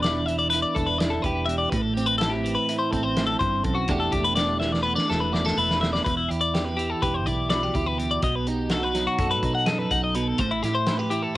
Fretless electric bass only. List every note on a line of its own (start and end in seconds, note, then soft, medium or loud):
0.00 0.63 E1 medium
0.76 1.18 E1 medium
1.24 1.66 E1 loud
1.73 2.56 A1 medium
2.93 3.34 A1 loud
3.41 3.61 G1 medium
3.65 3.85 B1 medium
3.89 4.10 E1 medium
4.13 4.96 E1 medium
5.11 5.51 E1 medium
5.57 5.99 E1 medium
6.06 6.27 E1 medium
6.31 6.93 E2 medium
7.02 7.27 E1 medium
7.27 7.68 B1 medium
7.75 8.16 D2 medium
8.22 9.06 B1 loud
9.19 9.43 F#2 medium
9.43 9.85 B2 medium
9.91 10.33 B1 medium
10.39 10.60 A1 medium
10.63 11.26 A2 medium